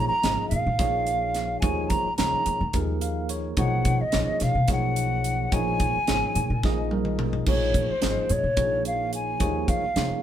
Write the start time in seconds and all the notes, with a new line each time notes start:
Already playing: F3 A#3 D#4 G#4 C#5
0.08 A#5, muted upright bass stroke
0.22 G#1 F3 A#3 D#4 G#4 D#5, snare, closed hi-hat
0.38 muted upright bass stroke
0.49 A#2 F5, closed hi-hat
0.66 A#2
0.78 A#1 F3 A#3 D#4 G#4 C#5, kick, snare, closed hi-hat
1.07 closed hi-hat
1.34 snare, closed hi-hat
1.60 D#2 F3 A#3 D#4 G#4 C#5 G#5, kick, closed hi-hat
1.89 D#3 A#5, kick, closed hi-hat
2.05 muted upright bass stroke
2.17 C#2 F3 A#3 D#4 G#4 C#5 A#5, snare, closed hi-hat
2.33 muted upright bass stroke
2.46 D#3, closed hi-hat
2.61 D#3
2.73 D#2 F3 A#3 D#4 G#4 A#4, kick, closed hi-hat
3.01 F5, closed hi-hat
3.29 C#5, closed hi-hat
3.57 B1 F3 A#3 D#4 G#4 C#5 F#5, kick, closed hi-hat
3.85 B2, kick, closed hi-hat
4.01 D#5, muted upright bass stroke
4.12 A#1 F3 A#3 D#4 G#4 C#5, snare, closed hi-hat
4.28 muted upright bass stroke
4.40 B2 F5, snare, closed hi-hat
4.55 B2
4.68 B1 F3 A#3 D#4 G#4 C#5, kick, snare, closed hi-hat
4.72 F#5
4.96 closed hi-hat
5.24 closed hi-hat
5.52 A#1 F3 A#3 D#4 G#4 C#5 G#5, kick, closed hi-hat
5.80 A#2, kick, closed hi-hat
5.95 muted upright bass stroke
6.07 G#1 F3 A#3 D#4 G#4 C#5, snare, closed hi-hat
6.23 muted upright bass stroke
6.35 A#2, closed hi-hat
6.50 A#2
6.63 A#1 F3 A#3 D#4 G#4 D#5, kick, snare
6.91 A#4, high tom
7.05 mid tom
7.19 mid tom
7.33 floor tom
7.46 A#1 F3 A#3 D#4 G#4 C#5, kick, crash
7.74 A#2, kick, closed hi-hat
7.89 C5, muted upright bass stroke
8.01 G#1 F3 A#3 D#4 G#4 D#5, snare, closed hi-hat
8.16 muted upright bass stroke
8.29 A#2 C#5, closed hi-hat
8.44 A#2
8.57 A#1 F3 A#3 D#4 G#4 C#5, kick, closed hi-hat
8.85 F5, closed hi-hat
9.13 G#5, closed hi-hat
9.39 D#2 F3 A#3 D#4 G#4 C#5, kick, closed hi-hat
9.68 D#3 F5, kick, closed hi-hat
9.82 muted upright bass stroke
9.96 C#2 F3 A#3 D#4 G#4 C#5, snare, closed hi-hat
10.10 muted upright bass stroke